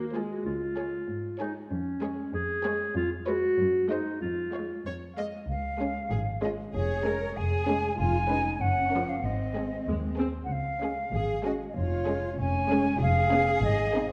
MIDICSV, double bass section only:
0, 0, Header, 1, 2, 480
1, 0, Start_track
1, 0, Key_signature, -5, "major"
1, 0, Tempo, 627615
1, 350, Time_signature, 2, 2, 24, 8
1, 10800, End_track
2, 0, Start_track
2, 0, Title_t, "Double bass section"
2, 0, Program_c, 0, 48
2, 4195, Note_on_c, 0, 37, 54
2, 4575, Note_off_c, 0, 37, 0
2, 4672, Note_on_c, 0, 32, 56
2, 5051, Note_off_c, 0, 32, 0
2, 5150, Note_on_c, 0, 29, 62
2, 5532, Note_off_c, 0, 29, 0
2, 5638, Note_on_c, 0, 29, 58
2, 6012, Note_off_c, 0, 29, 0
2, 6108, Note_on_c, 0, 29, 65
2, 6484, Note_off_c, 0, 29, 0
2, 6582, Note_on_c, 0, 30, 59
2, 6963, Note_off_c, 0, 30, 0
2, 7064, Note_on_c, 0, 32, 48
2, 7447, Note_off_c, 0, 32, 0
2, 7545, Note_on_c, 0, 39, 51
2, 7930, Note_off_c, 0, 39, 0
2, 8036, Note_on_c, 0, 37, 51
2, 8414, Note_off_c, 0, 37, 0
2, 8509, Note_on_c, 0, 32, 58
2, 8888, Note_off_c, 0, 32, 0
2, 8988, Note_on_c, 0, 29, 61
2, 9370, Note_off_c, 0, 29, 0
2, 9472, Note_on_c, 0, 29, 60
2, 9848, Note_off_c, 0, 29, 0
2, 9945, Note_on_c, 0, 29, 72
2, 10322, Note_off_c, 0, 29, 0
2, 10423, Note_on_c, 0, 32, 69
2, 10800, Note_off_c, 0, 32, 0
2, 10800, End_track
0, 0, End_of_file